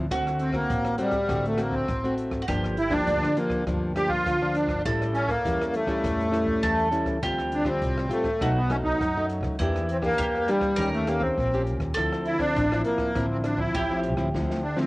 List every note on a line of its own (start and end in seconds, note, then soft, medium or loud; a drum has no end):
0.00 0.18 E4 medium
0.11 0.61 D2 medium
0.11 0.67 D3 soft
0.11 0.51 A3 soft
0.11 0.51 C4 medium
0.11 2.41 F#4 medium
0.11 0.51 F#4 medium
0.11 kick medium
0.11 cross-stick medium
0.11 closed hi-hat medium
0.27 cross-stick medium
0.27 closed hi-hat soft
0.39 0.56 C4 medium
0.39 closed hi-hat soft
0.53 0.96 A#3 loud
0.53 0.94 C4 medium
0.53 0.94 F#4 medium
0.53 kick medium
0.53 cross-stick medium
0.70 0.95 A1 medium
0.70 1.26 A2 soft
0.70 kick medium
0.70 closed hi-hat medium
0.85 cross-stick medium
0.85 closed hi-hat soft
0.98 1.46 G3 loud
0.98 1.16 A3 medium
0.98 1.17 C4 medium
0.98 1.17 F#4 medium
0.98 closed hi-hat medium
1.11 kick medium
1.11 cross-stick medium
1.11 closed hi-hat soft
1.28 1.80 A1 medium
1.28 1.85 D3 medium
1.28 1.54 A3 medium
1.28 1.54 C4 medium
1.28 1.54 F#4 medium
1.28 kick medium
1.28 cross-stick medium
1.28 closed hi-hat medium
1.46 1.61 A3 medium
1.46 closed hi-hat soft
1.57 1.86 A3 medium
1.57 1.75 A#3 medium
1.57 1.86 C4 medium
1.57 1.86 F#4 medium
1.57 cross-stick medium
1.57 closed hi-hat medium
1.72 2.14 C4 medium
1.72 kick medium
1.88 2.29 A1 medium
1.88 2.45 A2 medium
1.88 kick medium
1.88 cross-stick medium
1.88 closed hi-hat medium
2.04 2.44 A3 medium
2.04 2.44 C4 medium
2.04 2.44 F#4 medium
2.04 closed hi-hat soft
2.18 closed hi-hat soft
2.29 2.43 G#1 medium
2.29 kick medium
2.29 cross-stick medium
2.29 closed hi-hat soft
2.42 2.47 F#4 medium
2.48 2.99 G1 medium
2.48 3.04 G2 medium
2.48 2.76 F3 medium
2.48 2.76 A#3 medium
2.48 2.76 D4 medium
2.48 4.81 G4 medium
2.48 kick medium
2.48 cross-stick medium
2.48 closed hi-hat medium
2.64 cross-stick medium
2.77 2.93 E4 loud
2.77 closed hi-hat soft
2.90 3.31 F3 medium
2.90 3.32 A#3 medium
2.90 3.37 D4 loud
2.90 3.32 D4 medium
2.90 kick medium
2.90 cross-stick medium
2.90 closed hi-hat soft
3.07 3.33 D2 loud
3.07 3.64 D3 soft
3.07 kick medium
3.07 closed hi-hat medium
3.23 cross-stick medium
3.36 3.62 F3 medium
3.36 3.64 A#3 medium
3.36 3.62 A#3 medium
3.36 3.62 D4 medium
3.36 closed hi-hat soft
3.50 kick medium
3.50 cross-stick medium
3.67 4.17 D2 medium
3.67 4.23 G2 medium
3.67 3.92 F3 medium
3.67 3.92 A#3 medium
3.67 3.92 D4 medium
3.67 kick medium
3.67 cross-stick medium
3.67 closed hi-hat medium
3.96 4.36 F3 medium
3.96 4.36 A#3 medium
3.96 4.36 D4 medium
3.96 4.10 G4 loud
3.96 cross-stick medium
3.96 closed hi-hat medium
4.08 4.55 F4 medium
4.08 kick medium
4.26 4.68 D2 medium
4.26 4.83 D3 medium
4.26 kick medium
4.26 cross-stick medium
4.26 closed hi-hat medium
4.41 4.81 F3 medium
4.41 4.81 A#3 medium
4.41 4.81 D4 medium
4.54 4.82 D4 medium
4.54 closed hi-hat soft
4.66 4.81 G1 medium
4.66 kick medium
4.66 cross-stick medium
4.85 5.36 A1 medium
4.85 5.41 A2 medium
4.85 5.23 G3 medium
4.85 5.24 C#4 soft
4.85 5.24 E4 medium
4.85 6.62 A4 medium
4.85 kick medium
4.85 cross-stick medium
4.85 closed hi-hat medium
5.02 cross-stick medium
5.02 closed hi-hat soft
5.14 5.29 C#4 medium
5.14 closed hi-hat soft
5.28 5.75 A#3 medium
5.28 kick medium
5.28 cross-stick medium
5.45 5.70 E2 medium
5.45 6.01 E3 medium
5.45 5.84 G3 medium
5.45 5.84 C#4 soft
5.45 5.85 E4 medium
5.45 kick medium
5.45 closed hi-hat medium
5.62 cross-stick medium
5.62 closed hi-hat soft
5.74 6.89 A3 loud
5.74 closed hi-hat soft
5.87 6.28 G3 medium
5.87 6.28 C#4 medium
5.87 6.28 E4 medium
5.87 kick medium
5.87 cross-stick medium
5.87 closed hi-hat soft
6.04 6.54 E2 medium
6.04 6.60 A2 medium
6.04 kick medium
6.04 cross-stick medium
6.04 closed hi-hat medium
6.21 closed hi-hat soft
6.31 6.87 G3 medium
6.31 6.87 C#4 medium
6.31 6.87 E4 medium
6.31 cross-stick medium
6.31 closed hi-hat medium
6.46 kick medium
6.63 7.03 E2 medium
6.63 7.19 E3 medium
6.63 7.22 A4 medium
6.63 kick medium
6.63 cross-stick medium
6.63 closed hi-hat medium
6.79 closed hi-hat soft
6.91 7.17 G3 medium
6.91 7.17 C#4 medium
6.91 7.17 E4 medium
6.91 closed hi-hat medium
7.03 7.18 C#2 medium
7.03 kick medium
7.03 cross-stick medium
7.03 closed hi-hat soft
7.22 7.73 D2 medium
7.22 7.79 D3 medium
7.22 7.62 G3 soft
7.22 7.62 C4 soft
7.22 7.63 F4 medium
7.22 8.41 G4 medium
7.22 kick medium
7.22 cross-stick medium
7.22 closed hi-hat medium
7.38 cross-stick medium
7.52 7.68 D4 medium
7.52 closed hi-hat soft
7.65 8.06 G3 medium
7.65 8.06 C4 medium
7.65 8.12 C4 medium
7.65 8.06 F4 medium
7.65 kick medium
7.65 cross-stick medium
7.65 closed hi-hat soft
7.82 8.07 C2 medium
7.82 8.38 A2 soft
7.82 kick medium
7.82 closed hi-hat medium
7.98 cross-stick medium
8.09 8.28 G3 medium
8.09 8.52 A3 medium
8.09 8.28 C4 medium
8.09 8.28 F4 medium
8.09 closed hi-hat soft
8.24 kick medium
8.24 cross-stick medium
8.41 8.91 B1 medium
8.41 8.97 B2 medium
8.41 8.59 F#3 medium
8.41 8.59 A3 medium
8.41 8.59 D#4 medium
8.41 9.58 F#4 medium
8.41 kick medium
8.41 cross-stick medium
8.41 closed hi-hat medium
8.57 8.71 B3 medium
8.69 8.98 F#3 soft
8.69 8.98 A3 medium
8.69 8.76 C#4 medium
8.69 8.98 D#4 medium
8.69 cross-stick medium
8.69 closed hi-hat soft
8.83 9.26 D#4 medium
8.83 kick medium
9.00 9.56 F#2 medium
9.00 9.42 F#2 medium
9.00 kick medium
9.00 cross-stick medium
9.00 closed hi-hat medium
9.16 9.56 F#3 medium
9.16 9.56 A3 medium
9.16 9.56 D#4 medium
9.29 closed hi-hat soft
9.40 9.55 C#2 medium
9.40 kick medium
9.40 cross-stick medium
9.59 10.10 E2 medium
9.59 10.16 E3 medium
9.59 9.88 A#3 medium
9.59 9.88 D4 medium
9.59 10.18 E4 medium
9.59 9.88 G4 medium
9.59 kick medium
9.59 cross-stick medium
9.59 closed hi-hat medium
9.76 cross-stick medium
9.76 closed hi-hat soft
9.89 9.97 C4 medium
9.89 closed hi-hat soft
10.02 10.43 A#3 medium
10.02 10.50 A#3 loud
10.02 10.43 D4 medium
10.02 10.43 G4 medium
10.02 kick medium
10.02 cross-stick medium
10.18 10.44 E2 loud
10.18 10.75 E3 medium
10.18 10.80 G4 loud
10.18 kick medium
10.18 closed hi-hat medium
10.35 cross-stick medium
10.35 closed hi-hat soft
10.48 10.89 G3 medium
10.48 10.73 A#3 medium
10.48 10.73 D4 medium
10.48 10.74 G4 medium
10.48 closed hi-hat medium
10.61 kick medium
10.61 cross-stick medium
10.61 closed hi-hat soft
10.76 11.29 D#2 medium
10.76 11.35 D#3 medium
10.76 11.03 A3 medium
10.76 11.03 C#4 medium
10.76 11.04 G4 medium
10.76 11.99 A#4 loud
10.76 kick medium
10.76 cross-stick medium
10.76 closed hi-hat medium
10.94 11.08 A3 loud
10.94 closed hi-hat soft
11.06 11.36 A3 medium
11.06 11.22 A#3 medium
11.06 11.36 C#4 medium
11.06 11.36 G4 medium
11.06 cross-stick medium
11.06 closed hi-hat medium
11.20 11.62 C4 medium
11.20 kick medium
11.37 11.78 A#1 medium
11.37 11.94 A#2 medium
11.37 kick medium
11.37 cross-stick medium
11.37 closed hi-hat medium
11.54 11.93 C#4 medium
11.54 11.93 G4 medium
11.54 closed hi-hat soft
11.67 closed hi-hat soft
11.78 11.92 D#2 medium
11.78 kick medium
11.78 cross-stick medium
11.78 closed hi-hat soft
11.94 12.47 D2 medium
11.94 12.53 D3 soft
11.94 12.37 F3 soft
11.94 13.74 A4 loud
11.94 kick medium
11.94 cross-stick medium
11.94 closed hi-hat medium
11.98 12.37 C4 medium
11.98 12.37 E4 medium
12.13 cross-stick medium
12.25 12.40 E4 medium
12.25 closed hi-hat soft
12.39 12.65 F3 medium
12.39 12.65 C4 medium
12.39 12.82 D4 loud
12.39 12.65 E4 medium
12.39 kick medium
12.39 cross-stick medium
12.39 closed hi-hat soft
12.56 12.81 A1 loud
12.56 13.12 A2 medium
12.56 kick medium
12.56 closed hi-hat medium
12.72 13.11 F3 medium
12.72 13.11 C4 medium
12.72 13.11 E4 medium
12.72 cross-stick medium
12.84 13.26 A#3 loud
12.84 closed hi-hat soft
12.98 kick medium
12.98 cross-stick medium
13.15 13.66 A1 loud
13.15 13.72 D3 medium
13.15 13.55 F3 medium
13.15 13.55 C4 medium
13.15 13.55 E4 medium
13.15 kick medium
13.15 cross-stick medium
13.15 closed hi-hat medium
13.31 13.37 C4 medium
13.44 13.59 D4 medium
13.44 cross-stick medium
13.44 closed hi-hat soft
13.57 13.83 F3 medium
13.57 13.83 C4 medium
13.57 14.00 E4 medium
13.57 13.84 E4 medium
13.57 kick medium
13.74 14.15 A1 medium
13.74 14.31 A2 medium
13.74 14.87 G4 medium
13.74 kick medium
13.74 cross-stick medium
13.74 closed hi-hat medium
13.90 14.15 F3 medium
13.90 14.15 C4 medium
13.90 14.15 E4 medium
14.03 closed hi-hat soft
14.15 14.29 D2 medium
14.15 14.28 F3 medium
14.15 14.28 C4 medium
14.15 14.28 E4 medium
14.15 kick medium
14.15 cross-stick medium
14.34 14.84 D2 medium
14.34 14.87 D3 medium
14.34 14.62 F3 medium
14.34 14.62 C4 medium
14.34 14.62 E4 medium
14.34 kick medium
14.34 snare soft
14.50 snare soft
14.63 14.78 D4 medium
14.76 14.87 F3 medium
14.76 14.87 C4 medium
14.76 14.87 E4 medium
14.76 snare soft